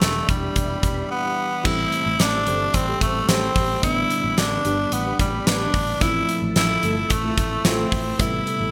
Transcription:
Already playing: E3 G3 B3 D4 G4 D5 E5 B5
0.01 E1 A3, snare, closed hi-hat
0.29 E1 G3, kick, closed hi-hat
0.56 E1, kick, closed hi-hat
0.83 E1, kick, closed hi-hat
1.11 B3
1.64 A1 E3 G3 A3 C4 E4 G4 C5 E5 A5, kick, crash
1.92 closed hi-hat
2.06 A1
2.19 A1 D4, snare, closed hi-hat, tambourine
2.47 G1 G4 A4 C5, closed hi-hat
2.74 A1 C4, kick, closed hi-hat
2.88 G4 A4 C5
3.01 A1 A3, kick, closed hi-hat
3.29 A1 C4 G4 A4 C5, snare, closed hi-hat, tambourine
3.56 A1, kick, open hi-hat
3.82 A1 D3 G3 B3 D4 E4 B4 D5 B5, kick, closed hi-hat
4.10 closed hi-hat
4.24 A1
4.37 A1 D4, snare, closed hi-hat, tambourine
4.65 G1 D4 G4 B4, closed hi-hat
4.92 A1 B3, closed hi-hat
5.06 D4 G4 B4
5.19 A1 G3, kick, closed hi-hat
5.47 A1 D4 G4 B4, snare, closed hi-hat, tambourine
5.74 A1, kick, open hi-hat
6.00 A1 F3 A3 C4 E4 A4 E5 A5, kick, closed hi-hat
6.29 closed hi-hat
6.42 A1
6.56 A1 E4, snare, closed hi-hat, tambourine
6.83 G1 A3 F4 A4, closed hi-hat
7.10 A1 A3, kick, closed hi-hat
7.24 A3 F4 A4
7.37 A1, kick, closed hi-hat
7.65 A1 A3 C4 F4 A4, snare, closed hi-hat, tambourine
7.92 A1, kick, open hi-hat
8.18 A1 C3 G3 B3 E4 G4 B5, kick, closed hi-hat
8.47 closed hi-hat
8.60 A1

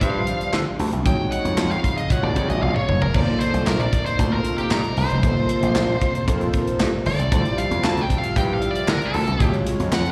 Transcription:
Already playing: C3 F3 G3 D4
0.01 G2 G3 D4 F4 C5 F5, kick, closed hi-hat
0.27 closed hi-hat
0.41 closed hi-hat
0.53 D3, snare, clap
0.79 D2, open hi-hat
0.92 C2, closed hi-hat
1.05 D#2 C#3 F#3 G#3 D#4 F#4 C#5 G5, kick, closed hi-hat
1.32 F#5, closed hi-hat
1.45 F2, closed hi-hat
1.58 F2, snare, clap
1.71 F5, closed hi-hat
1.84 kick, closed hi-hat
1.97 D#5, closed hi-hat
2.09 G#3 F4 F#4 C#5 F#5, kick, closed hi-hat
2.23 D#2 D5
2.36 F2, kick, closed hi-hat
2.49 A#1 D#5, closed hi-hat
2.62 A#1 F5, high tom
2.76 C#5, mid tom
2.88 F#1, mid tom
3.01 F1 A#4, floor tom
3.14 G1 C3 A#3 F4 A4 C5 D5, kick, crash
3.40 C5, closed hi-hat
3.54 C2, closed hi-hat
3.66 A#1 A#4, snare, clap
3.80 D5, closed hi-hat
3.93 kick, closed hi-hat
4.06 C5, closed hi-hat
4.18 D2 A#3 F4 A4 C5, kick, closed hi-hat
4.32 A#4
4.45 closed hi-hat
4.58 G4, closed hi-hat
4.71 G2 A#4, snare, clap
4.84 closed hi-hat
4.97 C2 C5, open hi-hat
5.10 F1, closed hi-hat
5.22 G1 A#3 F4 A4 B4, kick, closed hi-hat
5.30 C5
5.49 closed hi-hat
5.63 A#1, closed hi-hat
5.75 A#1, snare, clap
6.01 kick, closed hi-hat
6.15 closed hi-hat
6.28 F2 A#3 F4 A4 C5, kick, closed hi-hat
6.41 closed hi-hat
6.54 kick, closed hi-hat
6.67 closed hi-hat
6.80 G2, snare, clap
7.06 G1 D5, open hi-hat
7.19 C2, closed hi-hat
7.32 D2 C3 F3 G3 E4 F4 C5 E5, kick, closed hi-hat
7.45 closed hi-hat
7.58 F5, closed hi-hat
7.71 F2, closed hi-hat
7.84 D2 A5, snare, clap
7.97 G5, closed hi-hat
8.10 kick, closed hi-hat
8.18 F5
8.24 closed hi-hat
8.36 G2 G3 E4 F4 G4 G5, kick, closed hi-hat
8.53 F5
8.62 closed hi-hat
8.71 D5
8.75 closed hi-hat
8.88 D3 A#4, snare, clap
9.02 A4, closed hi-hat
9.14 D2, open hi-hat
9.27 C2, closed hi-hat
9.40 D#2 C#3 F#3 G#3 F4 F#4 C#5 F5, kick, closed hi-hat
9.54 closed hi-hat
9.67 closed hi-hat
9.80 F2, closed hi-hat
9.92 F2 F#5, snare, clap
10.05 closed hi-hat

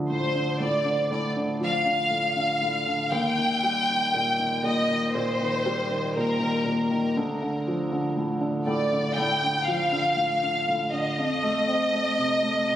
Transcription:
Already playing: D2 D3 F3
0.10 A2 C5
0.35 D3
0.60 A2 D5
0.85 D3
1.10 A2 D5
1.36 D3
1.60 F3 F5
1.86 D3
2.10 A2
2.36 D3
2.61 A2
2.87 D3
3.12 D#2 G5
3.38 D#3
3.63 G3
3.89 D#3
4.14 A#2
4.39 D#3
4.63 A#2 D#5
4.90 D#3
5.14 A#2 C5
5.41 D#3
5.66 G3
5.91 D#3
6.16 A#2 A#4
6.40 D#3
6.65 A#2
6.91 D#3
7.17 D2
7.42 D3
7.67 F3
7.92 D3
8.17 A2
8.41 D3
8.67 A2 D5
8.93 D3
9.15 A2 G5
9.43 D3
9.65 F3 F5
9.92 D3
10.16 A2
10.43 D3
10.68 A2
10.90 D3 D#5
11.18 F2
11.43 A3
11.68 C4
11.93 A3
12.18 C3
12.43 A3
12.69 C3

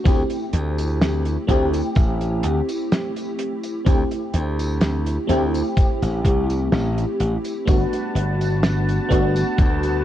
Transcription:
0.04 D2 A3 C4 E4 G4, kick, closed hi-hat, tambourine
0.30 closed hi-hat, tambourine
0.53 D2, closed hi-hat
0.78 closed hi-hat, tambourine
1.01 snare, closed hi-hat, tambourine
1.25 closed hi-hat, tambourine
1.47 D2 A3 C4 E4 G4, kick, closed hi-hat
1.73 closed hi-hat, tambourine
1.95 A1, kick, closed hi-hat, tambourine
2.21 closed hi-hat, tambourine
2.43 D2, closed hi-hat
2.69 closed hi-hat, tambourine
2.92 snare, closed hi-hat, tambourine
3.16 closed hi-hat, tambourine
3.39 closed hi-hat
3.63 closed hi-hat, tambourine
3.85 D2 A3 C4 E4 G4, kick, closed hi-hat, tambourine
4.11 closed hi-hat, tambourine
4.34 D2, closed hi-hat
4.59 closed hi-hat, tambourine
4.81 snare, closed hi-hat, tambourine
5.06 closed hi-hat, tambourine
5.27 D2 A3 C4 E4 G4, closed hi-hat
5.54 closed hi-hat, tambourine
5.77 kick, closed hi-hat, tambourine
6.02 A1, closed hi-hat, tambourine
6.24 C2, kick, closed hi-hat
6.50 closed hi-hat, tambourine
6.72 A1, snare, closed hi-hat, tambourine
6.98 closed hi-hat, tambourine
7.20 A1, closed hi-hat
7.45 closed hi-hat, tambourine
7.66 G1 G3 A3 B3 D4 F#4 B4 F#5 A5, kick, closed hi-hat, tambourine
7.93 closed hi-hat, tambourine
8.15 G1, closed hi-hat
8.41 closed hi-hat, tambourine
8.63 snare, closed hi-hat, tambourine
8.89 closed hi-hat, tambourine
9.09 G1 A3 B3 D4 F#4, kick, closed hi-hat
9.36 closed hi-hat, tambourine
9.58 D2, kick, closed hi-hat, tambourine
9.83 closed hi-hat, tambourine

